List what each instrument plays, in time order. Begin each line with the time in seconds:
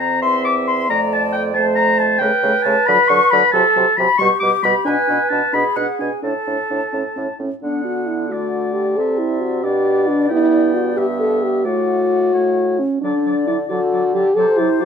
Already playing: bassoon F2, french horn C4, clarinet C5
0.00 oboe A#5, flute A#5
0.22 bassoon E2, clarinet E5, oboe C6, flute C6
0.44 oboe D6, flute D6
0.67 oboe C6, flute C6
0.90 bassoon F2, french horn A3, clarinet D5, flute A#5, oboe A#5
1.13 flute A5, oboe A5
1.32 oboe G5, flute G5
1.54 french horn A3, clarinet C5, oboe A5, flute A5
1.75 oboe A#5, flute A#5
1.98 oboe A5, flute A5
2.19 bassoon C#3, french horn A3, clarinet B4, oboe G5, flute G5
2.43 bassoon C#3, french horn A3
2.62 bassoon C#3, french horn A3, oboe A5, flute A5
2.86 bassoon D3, french horn F#3, flute B5, oboe B5
3.08 bassoon D3, french horn F#3, flute C#6, oboe C#6
3.30 bassoon D3, french horn F#3, flute B5, oboe B5
3.51 bassoon C3, french horn F#3, clarinet A4, oboe A5, flute A5
3.76 bassoon C3, french horn F#3
3.97 bassoon C3, french horn F#3, oboe B5, flute B5
4.18 bassoon B2, french horn G3, clarinet G4, oboe C#6, flute C#6
4.40 bassoon B2, french horn G3, oboe D6, flute D6
4.63 bassoon B2, french horn G3, oboe B5, flute B5
4.85 bassoon B2, french horn D4, clarinet B4, oboe G#5, flute G#5
5.08 bassoon B2, french horn D4
5.29 bassoon B2, french horn D4, oboe A5, flute A5
5.53 bassoon B2, french horn D4, clarinet G#4, oboe B5, flute B5
5.76 bassoon B2, french horn D4, oboe F#5, flute F#5
5.99 bassoon B2, french horn D4, oboe G#5, flute G#5
6.22 bassoon A2, french horn D4, clarinet A4, oboe A5, flute A5
6.47 bassoon A2, french horn D4
6.70 bassoon A2, french horn D4
6.93 bassoon A2, french horn C#4
7.16 bassoon A2, french horn C#4
7.39 bassoon A2, french horn C#4
7.62 bassoon D3, clarinet B3, french horn D4, flute F#5, oboe F#5
7.84 french horn F#4
8.07 french horn E4
8.29 clarinet A3, french horn F#4, flute D5, oboe D5
8.73 french horn G4
8.97 bassoon C3, clarinet C4, french horn A4, oboe E5
9.19 french horn E4
9.41 french horn F#4
9.63 bassoon B2, clarinet D4, french horn G4, oboe D5, flute D5
10.08 french horn D4
10.29 bassoon G2, clarinet B3, french horn E4, oboe G5
10.75 french horn F#4
10.97 bassoon G2, clarinet B3, french horn G4, oboe E5, flute E5
11.20 french horn A4
11.43 french horn G4
11.64 bassoon A2, clarinet A3, french horn F#4, oboe D5, flute F#5
12.33 bassoon A2, clarinet A3, oboe C#5
12.79 french horn C#4
13.02 bassoon D3, clarinet F#3, french horn D4, oboe D5, flute D5
13.25 clarinet F#3, oboe D5
13.47 clarinet F#3, french horn E4, oboe D5
13.69 bassoon D3, clarinet F#3, french horn F#4, flute A4, oboe D5
13.93 clarinet F#3, oboe D5
14.14 clarinet F#3, french horn G4, oboe D5
14.36 bassoon C3, clarinet F#3, french horn A4, flute C5, oboe D5
14.57 clarinet F#3, french horn E4, oboe D5
14.80 clarinet F#3, french horn F#4, oboe D5